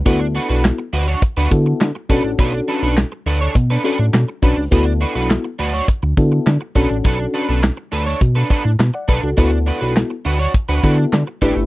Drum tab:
HH |xxxxxxxx|xxxxxxxo|xxxxxxxx|xxxxxxxx|
CP |--x---x-|--x---x-|--x---x-|--x---x-|
SD |--o---o-|--o---o-|--o---o-|--o---o-|
BD |o---oo-o|o---o--o|o---oo-o|o---oo-o|

HH |xxxxxxxx|
CP |--x---x-|
SD |--o---o-|
BD |o---oo-o|